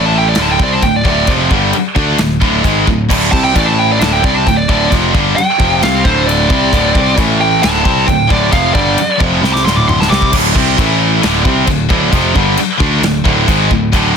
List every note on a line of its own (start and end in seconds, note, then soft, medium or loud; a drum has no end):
0.00 0.35 A1 medium
0.00 0.38 A2 loud
0.00 0.38 E3 loud
0.00 0.38 A3 loud
0.06 0.16 A5 medium
0.18 0.28 G5 medium
0.29 0.39 D5 medium
0.35 0.58 D1 medium
0.35 0.60 D2 loud
0.35 snare loud
0.35 china medium
0.39 0.60 A2 loud
0.39 0.61 D3 loud
0.39 0.51 A5 medium
0.52 0.62 G5 medium
0.59 0.81 C2 loud
0.59 0.83 C3 loud
0.59 0.83 G3 loud
0.59 0.83 C4 loud
0.59 kick loud
0.63 0.73 D5 loud
0.72 0.83 A5 medium
0.82 1.04 D1 medium
0.82 1.02 D2 medium
0.82 1.02 A2 medium
0.82 0.94 G5 medium
0.82 kick medium
0.82 china medium
0.96 1.05 D5 medium
1.05 1.27 D1 medium
1.05 1.27 D2 loud
1.05 1.28 A2 loud
1.05 1.28 D3 medium
1.05 1.28 D5 loud
1.05 kick loud
1.27 1.50 F1 medium
1.27 1.51 F2 medium
1.27 1.51 C3 medium
1.27 1.51 F3 loud
1.27 kick loud
1.27 china medium
1.51 1.72 G1 loud
1.51 1.74 G2 medium
1.51 1.74 D3 medium
1.51 1.75 G3 loud
1.51 kick loud
1.73 muted distorted electric guitar stroke medium
1.73 muted picked electric bass stroke soft
1.73 china medium
1.95 2.18 D2 medium
1.95 2.18 D3 medium
1.95 2.19 A3 loud
1.95 2.19 D4 loud
1.95 kick loud
2.17 2.41 D1 medium
2.17 2.37 D2 medium
2.17 2.37 A2 medium
2.17 snare loud
2.17 china medium
2.41 2.64 D1 medium
2.41 2.64 D2 medium
2.41 2.64 A2 loud
2.41 2.64 D3 loud
2.41 kick loud
2.64 2.86 G#1 medium
2.64 2.86 G#2 medium
2.64 2.86 D#3 loud
2.64 2.87 G#3 loud
2.64 kick loud
2.64 china medium
2.87 3.09 D1 medium
2.87 3.05 D2 medium
2.87 3.06 A2 medium
2.87 kick loud
3.09 3.32 D1 medium
3.09 3.31 D2 loud
3.09 3.31 A2 loud
3.09 3.32 D3 loud
3.09 kick loud
3.09 crash loud
3.09 china medium
3.31 3.54 C2 medium
3.31 3.54 C3 medium
3.31 3.54 G3 loud
3.31 3.55 C4 loud
3.31 3.44 A5 loud
3.31 kick loud
3.44 3.55 G5 loud
3.55 3.98 A1 medium
3.55 3.99 A2 medium
3.55 4.00 E3 medium
3.55 4.00 A3 loud
3.55 3.67 D5 loud
3.55 kick loud
3.55 china medium
3.66 3.79 A5 loud
3.79 3.90 G5 medium
3.92 4.02 D5 medium
4.00 4.22 D1 medium
4.00 4.23 D2 loud
4.00 4.23 A2 loud
4.00 4.23 D3 loud
4.00 4.13 A5 loud
4.00 snare loud
4.00 china medium
4.13 4.24 G5 loud
4.23 4.45 C2 medium
4.23 4.46 C3 medium
4.23 4.46 G3 loud
4.23 4.46 C4 loud
4.23 4.35 D5 medium
4.23 kick loud
4.34 4.48 A5 medium
4.47 4.68 D1 medium
4.47 4.65 D2 medium
4.47 4.65 A2 medium
4.47 4.58 G5 loud
4.47 kick loud
4.47 china medium
4.57 4.68 D5 loud
4.68 4.90 D1 medium
4.68 4.91 D2 medium
4.68 4.91 A2 loud
4.68 4.91 D3 loud
4.68 4.91 D5 loud
4.68 kick loud
4.92 5.13 F1 medium
4.92 5.14 F2 medium
4.92 5.14 C3 medium
4.92 5.14 F3 loud
4.92 kick loud
4.92 china medium
5.14 5.35 G1 loud
5.14 5.37 G2 medium
5.14 5.37 D3 medium
5.14 5.37 G3 loud
5.14 kick loud
5.36 5.80 G5 loud
5.36 muted picked electric bass stroke soft
5.36 muted distorted electric guitar stroke medium
5.36 china medium
5.60 5.81 F1 medium
5.60 5.82 F2 medium
5.60 5.83 C3 loud
5.60 5.82 F3 loud
5.60 kick loud
5.82 6.03 C2 loud
5.82 6.05 C3 loud
5.82 6.05 G3 loud
5.82 6.05 C4 loud
5.82 6.05 F5 loud
5.82 snare loud
5.82 china medium
6.04 6.47 D1 loud
6.04 6.50 D2 medium
6.04 6.50 A2 loud
6.04 6.51 D3 loud
6.04 6.27 C5 loud
6.04 kick loud
6.26 7.15 D5 loud
6.26 china medium
6.50 6.71 C2 loud
6.50 6.72 C3 loud
6.50 6.72 G3 loud
6.50 6.73 C4 loud
6.50 kick loud
6.73 6.94 D1 loud
6.73 6.95 D2 medium
6.73 6.95 A2 loud
6.73 6.95 D3 loud
6.73 kick loud
6.73 china medium
6.95 7.16 C2 loud
6.95 7.18 C3 medium
6.95 7.18 G3 medium
6.95 7.18 C4 loud
6.95 kick loud
7.18 7.60 A1 loud
7.18 7.63 A2 medium
7.18 7.63 E3 loud
7.18 7.63 A3 loud
7.18 kick loud
7.18 china medium
7.41 7.63 G5 loud
7.63 7.85 D1 loud
7.63 7.84 D2 loud
7.63 7.85 A2 loud
7.63 7.85 D3 loud
7.63 8.07 A5 loud
7.63 snare loud
7.63 china medium
7.85 8.07 C2 medium
7.85 8.06 C3 loud
7.85 8.06 G3 loud
7.85 8.08 C4 loud
7.85 kick loud
8.07 8.29 D1 medium
8.07 8.25 D2 medium
8.07 8.26 A2 medium
8.07 8.30 G5 medium
8.07 kick medium
8.07 china medium
8.27 8.52 D1 loud
8.27 8.51 D2 medium
8.27 8.51 A2 loud
8.27 8.51 D3 loud
8.27 kick loud
8.31 8.53 D5 medium
8.51 8.74 F1 medium
8.51 8.74 F2 loud
8.51 8.74 C3 medium
8.51 8.74 F3 loud
8.51 8.74 F5 loud
8.51 kick loud
8.51 china medium
8.74 8.96 G1 loud
8.74 8.97 G2 loud
8.74 8.97 D3 loud
8.74 8.97 G3 medium
8.74 9.19 D5 loud
8.74 kick loud
8.97 muted distorted electric guitar stroke medium
8.97 china medium
9.18 9.42 F1 loud
9.18 9.41 F2 medium
9.18 9.40 C3 loud
9.18 9.42 F3 medium
9.18 kick loud
9.41 9.64 C2 loud
9.41 9.63 C3 loud
9.41 9.64 G3 loud
9.41 9.64 C4 loud
9.41 snare medium
9.53 9.65 D6 loud
9.53 snare medium
9.63 10.08 D1 loud
9.63 10.07 D2 loud
9.63 10.08 A2 loud
9.63 10.08 D3 loud
9.63 9.76 C6 medium
9.63 snare medium
9.76 9.88 D6 loud
9.76 mid tom medium
9.88 10.00 C6 medium
9.88 mid tom medium
10.00 10.10 A5 loud
10.00 snare medium
10.07 10.32 C2 loud
10.07 10.31 C3 loud
10.07 10.31 G3 loud
10.07 10.31 C4 loud
10.07 10.32 D6 loud
10.12 snare loud
10.22 kick medium
10.31 10.54 D1 medium
10.31 10.54 D2 medium
10.31 10.53 A2 medium
10.31 10.53 D3 loud
10.31 kick loud
10.31 crash loud
10.31 china medium
10.54 10.77 C2 loud
10.54 10.77 C3 loud
10.54 10.77 G3 medium
10.54 10.77 C4 loud
10.54 kick loud
10.77 11.20 A1 loud
10.77 11.21 A2 loud
10.77 11.22 E3 loud
10.77 11.23 A3 loud
10.77 kick loud
10.77 china medium
11.22 11.45 D1 loud
11.22 11.43 D2 loud
11.22 11.44 A2 loud
11.22 11.44 D3 loud
11.22 snare loud
11.22 china medium
11.43 11.67 C2 loud
11.43 11.66 C3 medium
11.43 11.67 G3 medium
11.43 11.67 C4 loud
11.43 kick loud
11.67 11.89 D1 medium
11.67 11.86 D2 medium
11.67 11.86 A2 medium
11.67 kick loud
11.67 china medium
11.89 12.12 D1 loud
11.89 12.10 D2 medium
11.89 12.11 A2 loud
11.89 12.11 D3 loud
11.89 kick loud
12.11 12.34 F1 loud
12.11 12.34 F2 medium
12.11 12.34 C3 loud
12.11 12.34 F3 loud
12.11 kick loud
12.11 china medium
12.35 12.57 G1 medium
12.35 12.56 G2 medium
12.35 12.58 D3 loud
12.35 12.58 G3 loud
12.35 kick loud
12.57 muted distorted electric guitar stroke medium
12.57 china medium
12.78 13.01 D2 loud
12.78 13.00 D3 loud
12.78 13.02 A3 loud
12.78 13.02 D4 loud
12.78 kick loud
13.00 13.24 D1 medium
13.00 13.20 D2 medium
13.00 13.20 A2 medium
13.00 china medium
13.04 snare loud
13.24 13.47 D1 loud
13.24 13.47 D2 loud
13.24 13.47 A2 loud
13.24 13.47 D3 loud
13.24 kick loud
13.48 13.69 G#1 loud
13.48 13.70 G#2 medium
13.48 13.70 D#3 medium
13.48 13.70 G#3 loud
13.48 kick loud
13.48 china medium
13.71 13.92 D1 medium
13.71 13.89 D2 medium
13.71 13.89 A2 medium
13.71 kick loud
13.93 14.14 D1 medium
13.93 14.15 D2 loud
13.93 14.15 A2 loud
13.93 14.15 D3 loud
13.93 kick loud
13.93 china medium